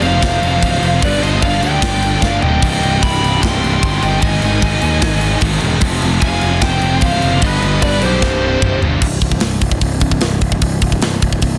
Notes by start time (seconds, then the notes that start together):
Already playing: F2 C3 F3
0.02 F1 F2 C3 C5 F5, crash
0.11 F2 C3
0.19 F1 F2 C3, kick, crash
0.23 F2 C3 F3, snare
0.33 F2 C3
0.40 F1 F2 C3, crash
0.48 F2 C3
0.57 F2 C3
0.63 C1 F2 C3, kick, crash
0.71 F2 C3
0.79 F1 F2 C3, crash
0.86 F2 C3
0.94 F2 C3
1.02 G1 G2 D3 G3 B4 D5, kick, crash
1.09 G2 D3
1.17 G2 D3
1.22 G1 G2 D3 C5 D#5, crash
1.33 G2 D3
1.40 G1 G2 D3 D5 F5, kick, crash
1.47 G2 D3
1.54 G2 D3
1.60 D2 G2 D3 D5 G5, crash
1.70 G2 D3
1.77 G2 D3
1.82 G1 G2 D3 G3, kick, snare, crash
1.87 D3
1.93 G2 D3
2.00 G2 D3, crash
2.09 G2 D3
2.15 G2 D3
2.22 G1 G2 D3 D5 F5, kick, snare
2.30 G2 D3
2.38 G2 D3 G5
2.42 D1 G2 D#5, floor tom
2.48 D3
2.54 G2 D3
2.61 C1 C2 G2 C3 D#5 G5, kick, crash
2.70 C2 G2
2.77 C2 G2
2.82 C1 C2 G2, crash
2.92 C2 G2
2.98 C2 G2 B5
3.03 C2 G5, kick, crash
3.08 G2
3.14 C2 G2
3.22 C1 C2 G2, crash
3.30 C2 G2
3.36 C2 G2
3.42 C1 C2 C3 G5 C6, kick, snare, crash
3.46 G2
3.53 C2 G2
3.60 C1 C2 G2, crash
3.68 C2 G2
3.75 C2 G2
3.83 G1 C2 G2, kick, crash
3.90 C2 G2
3.99 C2 G2, crash
4.03 G1 C2 D#5 G5
4.07 G2
4.14 C2 G2
4.19 G#1 G#2 D#3 D#5 G#5, kick, crash
4.24 G#3
4.30 G#2 D#3
4.37 G#2 D#3
4.42 G#1 G#2 D#3, crash
4.52 G#2 D#3
4.60 G#1 G#2 D#3, kick, crash
4.68 G#2 D#3
4.76 G#2 D#3
4.82 D#2 G#2 D#3, crash
4.90 G#2 D#3
4.99 G#1 G#2 D#3, kick, snare, crash
5.03 G#2 D#3 G#3
5.12 G#2 D#3
5.21 G#2 D#3, crash
5.29 G#2 D#3
5.36 G#2 D#3
5.41 G#1 G#2 D#3, kick, crash
5.52 G#2 D#3
5.59 E1 G#2 D#3, crash
5.66 G#2 D#3
5.75 G#2 D#3
5.81 F1 F2 C3 F3, kick, crash
5.89 F2 C3
5.97 F2 C3
6.01 F1 F2 C3, crash
6.12 F2 C3
6.19 F1 F2 C3 G#5, kick, crash
6.24 F2 F5
6.29 C3
6.35 F2 C3
6.41 F1 F2 C3, crash
6.51 F2 C3
6.58 F2 C3 G5, kick, crash
6.62 F1 F2 C3 F3 C5, snare
6.67 C3
6.72 F2 C3
6.81 F1 F2 C3, crash
6.88 F2 C3
6.96 F2 C3
7.01 C1 F2 C3 F5, kick, crash
7.06 C5
7.11 F2 C3
7.19 F#1 F2 C3, crash
7.26 F2 C3
7.34 F2 C3
7.42 G1 G2 D3 G3 D#5, kick, crash
7.46 G2 B4
7.51 D3
7.59 G1 G2 D3, crash
7.67 G2 D3
7.73 G2 D3
7.82 G1 G2 D3 D5, kick, crash
7.87 G2 D3 B4
7.98 B1 G2 D3, crash
8.02 G2 D3 G4 C5
8.13 G2 D3
8.22 C1 C2 G2 C3, kick, snare
8.30 C2 G2
8.38 C2 G2
8.46 C2 G2
8.54 C2 G2
8.62 C1 C2 G2, kick, mid tom
8.71 C2 G2
8.78 C2 G2
8.82 G1 C2 G2, floor tom
8.94 C2 G2
9.01 C1, kick, crash
9.21 C1, kick, open hi-hat
9.32 kick
9.40 C1, snare, open hi-hat
9.61 C1, kick, open hi-hat
9.71 kick
9.81 C1, kick, open hi-hat
10.00 C1, kick, open hi-hat
10.11 kick
10.21 C1, snare, open hi-hat
10.41 C1, kick, open hi-hat
10.52 kick
10.62 C1, kick, open hi-hat
10.82 C1, kick, open hi-hat
10.92 kick
11.01 C1, snare, open hi-hat
11.22 C1, kick, open hi-hat
11.33 kick
11.42 C1, kick, open hi-hat